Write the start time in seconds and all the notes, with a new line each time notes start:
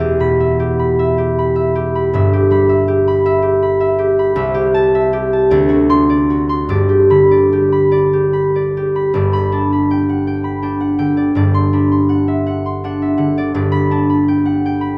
Already playing: E1 E2 E5 B5
0.00 G4
0.20 B2 B5
0.40 E5
0.60 G4
0.79 B5
0.99 E5
1.18 G4
1.39 B5
1.56 E5
1.75 G4
1.95 B5
2.13 G1 G2 E5
2.33 G4
2.51 G3 B5
2.69 E5
2.88 G4
3.08 B5
3.26 E5
3.42 G4
3.62 B5
3.80 E5
3.99 G4
4.19 B5
4.36 C2 E5
4.54 G4
4.74 A5
4.95 E5
5.13 G4
5.33 A5
5.51 D2 D5
5.69 F#4
5.89 D4 C6
6.10 D5
6.30 F#4
6.49 C6
6.69 G1 G2 D5
6.89 G4
7.10 D3 B5
7.31 D5
7.53 G4
7.72 B5
7.92 D5
8.13 G4
8.33 B5
8.56 D5
8.77 G4
8.96 B5
9.14 G1 G2 D5
9.33 B5
9.52 D4 A5
9.72 B5
9.91 G5
10.09 F#5
10.27 G5
10.44 B5
10.62 D4 G5
10.80 F#5
10.99 D3 G5
11.17 D5
11.35 G1 G2 D5
11.54 C6
11.73 D4 B5
11.91 C6
12.09 F#5
12.28 E5
12.47 F#5
12.66 C6
12.84 D4 F#5
13.02 E5
13.17 D3 F#5
13.38 D5
13.54 G1 G2 D5
13.72 B5
13.91 D4 A5
14.10 B5
14.28 G5
14.45 F#5
14.66 G5
14.81 B5